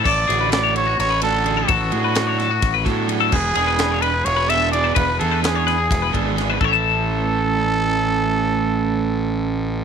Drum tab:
CC |x------|-------|x------|-------|
RD |-xxxxxx|xxxxxxx|-xxxxxx|xxxxxxx|
SD |-oo-o--|--oooo-|--o----|--ooo-o|
BD |o------|o---oo-|o------|o---oo-|

CC |-------|-------|
RD |-------|-------|
SD |-------|-------|
BD |o------|-------|